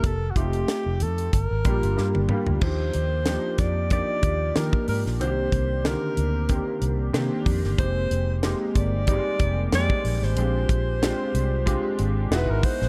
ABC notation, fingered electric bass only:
X:1
M:4/4
L:1/16
Q:"Swing 16ths" 1/4=93
K:Eb
V:1 name="Fingered electric bass" clef=bass
F,,,2 F,,,2 z F,,, F,,2 G,,, A,,, B,,, G,,, G,, G,,, z D,, | E,,2 E,,3 z F,,3 z E,,2 E, z A,, B,,, | C,,2 C,,3 z D,,3 z C,,2 C, z F,, G,,, | F,,,2 F,,,3 z G,,,3 z F,,,2 F,, z B,,, A,,, |
B,,,2 B,,,3 z C,,3 z A,,,2 =E,,, ^G,,, z B,,, |]